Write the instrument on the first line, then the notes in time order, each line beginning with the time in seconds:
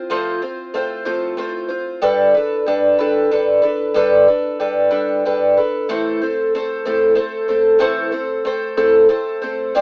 twelve-string acoustic guitar
0.10 F3 A3 C4 F4 C5
0.42 C4 F4 C5
0.74 A3 C4 F4 C5
1.05 F3 A3 C4 F4 C5
1.37 A3 C4 F4 C5
1.68 C4 F4 C5
2.02 G3 D4 A4 B4
2.34 D4 A4 B4
2.66 G3 D4 A4 B4
2.99 G3 D4 A4 B4
3.31 G3 D4 A4 B4
3.62 D4 A4 B4
3.94 G3 D4 A4 B4
4.28 D4 A4 B4
4.60 G3 D4 A4 B4
4.91 G3 D4 A4 B4
5.25 G3 D4 A4 B4
5.57 D4 A4 B4
5.89 A2 E3 A3 C4 A4 C5
6.22 A3 C4 A4 C5
6.55 A3 C4 A4 C5
6.85 A2 E3 A3 C4 A4 C5
7.15 A3 C4 A4 C5
7.48 A3 C4 A4 C5
7.79 A2 E3 A3 C4 A4 C5
8.12 A3 C4 A4 C5
8.45 A3 C4 A4 C5
8.77 A2 E3 A3 C4 A4 C5
9.09 A3 C4 A4 C5
9.42 A3 C4 A4 C5
9.75 C4 D4 G4 C5